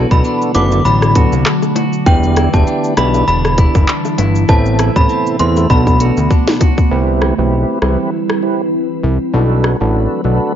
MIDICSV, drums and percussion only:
0, 0, Header, 1, 2, 480
1, 0, Start_track
1, 0, Tempo, 606061
1, 1634, Time_signature, 4, 2, 24, 8
1, 8362, End_track
2, 0, Start_track
2, 0, Title_t, "Drums"
2, 88, Note_on_c, 9, 36, 92
2, 89, Note_on_c, 9, 82, 78
2, 167, Note_off_c, 9, 36, 0
2, 169, Note_off_c, 9, 82, 0
2, 194, Note_on_c, 9, 82, 73
2, 273, Note_off_c, 9, 82, 0
2, 329, Note_on_c, 9, 82, 64
2, 408, Note_off_c, 9, 82, 0
2, 432, Note_on_c, 9, 42, 73
2, 432, Note_on_c, 9, 61, 67
2, 432, Note_on_c, 9, 82, 52
2, 512, Note_off_c, 9, 42, 0
2, 512, Note_off_c, 9, 61, 0
2, 512, Note_off_c, 9, 82, 0
2, 568, Note_on_c, 9, 82, 80
2, 570, Note_on_c, 9, 60, 76
2, 647, Note_off_c, 9, 82, 0
2, 650, Note_off_c, 9, 60, 0
2, 675, Note_on_c, 9, 82, 74
2, 754, Note_off_c, 9, 82, 0
2, 810, Note_on_c, 9, 37, 93
2, 811, Note_on_c, 9, 82, 58
2, 889, Note_off_c, 9, 37, 0
2, 890, Note_off_c, 9, 82, 0
2, 914, Note_on_c, 9, 42, 89
2, 914, Note_on_c, 9, 82, 62
2, 915, Note_on_c, 9, 36, 115
2, 993, Note_off_c, 9, 42, 0
2, 993, Note_off_c, 9, 82, 0
2, 995, Note_off_c, 9, 36, 0
2, 1049, Note_on_c, 9, 82, 86
2, 1128, Note_off_c, 9, 82, 0
2, 1154, Note_on_c, 9, 37, 91
2, 1154, Note_on_c, 9, 39, 90
2, 1156, Note_on_c, 9, 82, 78
2, 1233, Note_off_c, 9, 37, 0
2, 1233, Note_off_c, 9, 39, 0
2, 1236, Note_off_c, 9, 82, 0
2, 1286, Note_on_c, 9, 60, 74
2, 1287, Note_on_c, 9, 82, 62
2, 1365, Note_off_c, 9, 60, 0
2, 1367, Note_off_c, 9, 82, 0
2, 1390, Note_on_c, 9, 61, 81
2, 1394, Note_on_c, 9, 42, 80
2, 1394, Note_on_c, 9, 82, 58
2, 1469, Note_off_c, 9, 61, 0
2, 1473, Note_off_c, 9, 42, 0
2, 1473, Note_off_c, 9, 82, 0
2, 1529, Note_on_c, 9, 82, 72
2, 1608, Note_off_c, 9, 82, 0
2, 1634, Note_on_c, 9, 82, 70
2, 1635, Note_on_c, 9, 36, 121
2, 1714, Note_off_c, 9, 36, 0
2, 1714, Note_off_c, 9, 82, 0
2, 1769, Note_on_c, 9, 82, 58
2, 1848, Note_off_c, 9, 82, 0
2, 1873, Note_on_c, 9, 42, 75
2, 1873, Note_on_c, 9, 82, 52
2, 1876, Note_on_c, 9, 37, 93
2, 1877, Note_on_c, 9, 60, 50
2, 1952, Note_off_c, 9, 42, 0
2, 1952, Note_off_c, 9, 82, 0
2, 1955, Note_off_c, 9, 37, 0
2, 1956, Note_off_c, 9, 60, 0
2, 2008, Note_on_c, 9, 36, 92
2, 2010, Note_on_c, 9, 82, 81
2, 2087, Note_off_c, 9, 36, 0
2, 2089, Note_off_c, 9, 82, 0
2, 2114, Note_on_c, 9, 82, 73
2, 2193, Note_off_c, 9, 82, 0
2, 2249, Note_on_c, 9, 82, 64
2, 2329, Note_off_c, 9, 82, 0
2, 2352, Note_on_c, 9, 61, 68
2, 2353, Note_on_c, 9, 42, 71
2, 2353, Note_on_c, 9, 82, 52
2, 2354, Note_on_c, 9, 37, 94
2, 2432, Note_off_c, 9, 42, 0
2, 2432, Note_off_c, 9, 61, 0
2, 2432, Note_off_c, 9, 82, 0
2, 2433, Note_off_c, 9, 37, 0
2, 2489, Note_on_c, 9, 82, 81
2, 2490, Note_on_c, 9, 60, 76
2, 2568, Note_off_c, 9, 82, 0
2, 2570, Note_off_c, 9, 60, 0
2, 2596, Note_on_c, 9, 82, 77
2, 2675, Note_off_c, 9, 82, 0
2, 2731, Note_on_c, 9, 37, 94
2, 2731, Note_on_c, 9, 82, 55
2, 2810, Note_off_c, 9, 37, 0
2, 2810, Note_off_c, 9, 82, 0
2, 2834, Note_on_c, 9, 42, 84
2, 2834, Note_on_c, 9, 82, 59
2, 2836, Note_on_c, 9, 36, 113
2, 2914, Note_off_c, 9, 42, 0
2, 2914, Note_off_c, 9, 82, 0
2, 2915, Note_off_c, 9, 36, 0
2, 2969, Note_on_c, 9, 82, 84
2, 2970, Note_on_c, 9, 36, 106
2, 3048, Note_off_c, 9, 82, 0
2, 3049, Note_off_c, 9, 36, 0
2, 3074, Note_on_c, 9, 39, 95
2, 3077, Note_on_c, 9, 82, 76
2, 3153, Note_off_c, 9, 39, 0
2, 3156, Note_off_c, 9, 82, 0
2, 3206, Note_on_c, 9, 60, 75
2, 3208, Note_on_c, 9, 82, 59
2, 3286, Note_off_c, 9, 60, 0
2, 3287, Note_off_c, 9, 82, 0
2, 3310, Note_on_c, 9, 61, 80
2, 3314, Note_on_c, 9, 42, 82
2, 3314, Note_on_c, 9, 82, 61
2, 3390, Note_off_c, 9, 61, 0
2, 3393, Note_off_c, 9, 42, 0
2, 3393, Note_off_c, 9, 82, 0
2, 3449, Note_on_c, 9, 82, 72
2, 3528, Note_off_c, 9, 82, 0
2, 3554, Note_on_c, 9, 82, 74
2, 3555, Note_on_c, 9, 36, 118
2, 3634, Note_off_c, 9, 36, 0
2, 3634, Note_off_c, 9, 82, 0
2, 3689, Note_on_c, 9, 82, 54
2, 3768, Note_off_c, 9, 82, 0
2, 3792, Note_on_c, 9, 42, 74
2, 3792, Note_on_c, 9, 82, 55
2, 3795, Note_on_c, 9, 37, 97
2, 3798, Note_on_c, 9, 60, 51
2, 3872, Note_off_c, 9, 42, 0
2, 3872, Note_off_c, 9, 82, 0
2, 3875, Note_off_c, 9, 37, 0
2, 3877, Note_off_c, 9, 60, 0
2, 3928, Note_on_c, 9, 36, 91
2, 3929, Note_on_c, 9, 82, 75
2, 4007, Note_off_c, 9, 36, 0
2, 4009, Note_off_c, 9, 82, 0
2, 4034, Note_on_c, 9, 82, 73
2, 4113, Note_off_c, 9, 82, 0
2, 4169, Note_on_c, 9, 82, 64
2, 4248, Note_off_c, 9, 82, 0
2, 4272, Note_on_c, 9, 42, 70
2, 4272, Note_on_c, 9, 61, 65
2, 4272, Note_on_c, 9, 82, 51
2, 4351, Note_off_c, 9, 42, 0
2, 4351, Note_off_c, 9, 82, 0
2, 4352, Note_off_c, 9, 61, 0
2, 4408, Note_on_c, 9, 82, 80
2, 4410, Note_on_c, 9, 60, 78
2, 4487, Note_off_c, 9, 82, 0
2, 4490, Note_off_c, 9, 60, 0
2, 4514, Note_on_c, 9, 36, 65
2, 4515, Note_on_c, 9, 82, 72
2, 4593, Note_off_c, 9, 36, 0
2, 4594, Note_off_c, 9, 82, 0
2, 4648, Note_on_c, 9, 36, 60
2, 4651, Note_on_c, 9, 82, 56
2, 4728, Note_off_c, 9, 36, 0
2, 4730, Note_off_c, 9, 82, 0
2, 4754, Note_on_c, 9, 42, 85
2, 4754, Note_on_c, 9, 82, 59
2, 4833, Note_off_c, 9, 42, 0
2, 4833, Note_off_c, 9, 82, 0
2, 4889, Note_on_c, 9, 82, 83
2, 4968, Note_off_c, 9, 82, 0
2, 4994, Note_on_c, 9, 36, 91
2, 4996, Note_on_c, 9, 82, 80
2, 5073, Note_off_c, 9, 36, 0
2, 5075, Note_off_c, 9, 82, 0
2, 5126, Note_on_c, 9, 60, 73
2, 5127, Note_on_c, 9, 82, 61
2, 5128, Note_on_c, 9, 38, 86
2, 5205, Note_off_c, 9, 60, 0
2, 5207, Note_off_c, 9, 82, 0
2, 5208, Note_off_c, 9, 38, 0
2, 5230, Note_on_c, 9, 61, 80
2, 5233, Note_on_c, 9, 42, 85
2, 5233, Note_on_c, 9, 82, 59
2, 5234, Note_on_c, 9, 36, 106
2, 5309, Note_off_c, 9, 61, 0
2, 5313, Note_off_c, 9, 36, 0
2, 5313, Note_off_c, 9, 42, 0
2, 5313, Note_off_c, 9, 82, 0
2, 5368, Note_on_c, 9, 36, 99
2, 5368, Note_on_c, 9, 82, 72
2, 5448, Note_off_c, 9, 36, 0
2, 5448, Note_off_c, 9, 82, 0
2, 5716, Note_on_c, 9, 37, 85
2, 5795, Note_off_c, 9, 37, 0
2, 6193, Note_on_c, 9, 37, 83
2, 6272, Note_off_c, 9, 37, 0
2, 6570, Note_on_c, 9, 37, 90
2, 6649, Note_off_c, 9, 37, 0
2, 7635, Note_on_c, 9, 37, 92
2, 7715, Note_off_c, 9, 37, 0
2, 8362, End_track
0, 0, End_of_file